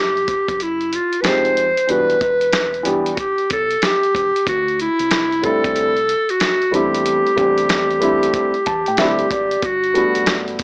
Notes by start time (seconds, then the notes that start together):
Already playing: F#1 G4
0.17 closed hi-hat
0.28 kick, closed hi-hat
0.48 F#1, kick, closed hi-hat
0.60 E4, closed hi-hat
0.81 closed hi-hat
0.93 F4, closed hi-hat
1.13 closed hi-hat
1.21 F1 F3 G#3 C4 D#4 B4, snare, closed hi-hat
1.26 G4 C5
1.45 closed hi-hat
1.57 closed hi-hat
1.77 closed hi-hat
1.87 E1 E3 G3 B3 D4 F#4 B4, closed hi-hat
2.10 closed hi-hat
2.21 E1, kick, closed hi-hat
2.41 closed hi-hat
2.53 snare, closed hi-hat
2.74 closed hi-hat
2.83 E3 G3 B3 D4 G4, closed hi-hat
3.06 closed hi-hat
3.14 F#4, kick, closed hi-hat
3.19 G4
3.38 closed hi-hat
3.50 B1 A4, kick, closed hi-hat
3.71 closed hi-hat
3.82 G4, snare, closed hi-hat
4.03 closed hi-hat
4.15 E1, kick, closed hi-hat
4.36 closed hi-hat
4.47 D2 F#4, kick, closed hi-hat
4.68 closed hi-hat
4.80 E4, closed hi-hat
4.99 C2, closed hi-hat
5.11 snare, closed hi-hat
5.32 closed hi-hat
5.42 G3 A3 C4 D4 E4 A4, kick, closed hi-hat
5.64 C2, kick, closed hi-hat
5.76 closed hi-hat
5.97 closed hi-hat
6.09 closed hi-hat
6.29 F#4, closed hi-hat
6.40 snare, closed hi-hat
6.62 closed hi-hat
6.71 E2 G3 A3 C4 D4 E4 G4, closed hi-hat
6.94 closed hi-hat
7.06 closed hi-hat
7.27 closed hi-hat
7.36 E2 G3 A3 C4 D4 G4, kick, closed hi-hat
7.58 closed hi-hat
7.69 snare, closed hi-hat
7.91 closed hi-hat
8.00 G3 A3 C4 D4 E4, closed hi-hat
8.23 closed hi-hat
8.34 kick, closed hi-hat
8.54 closed hi-hat
8.66 E2 A5, kick, closed hi-hat
8.86 A2 G5, closed hi-hat
8.97 D2 G3 A3 C4 D4 E4 G4 E5, snare, closed hi-hat
9.19 closed hi-hat
9.31 G#1 D5, kick, closed hi-hat
9.51 closed hi-hat
9.62 G1 F#4, kick, closed hi-hat
9.84 closed hi-hat
9.94 G3 A3 B3 D4 F#4, closed hi-hat
10.15 F#1, closed hi-hat
10.26 snare, closed hi-hat
10.48 closed hi-hat
10.59 kick, closed hi-hat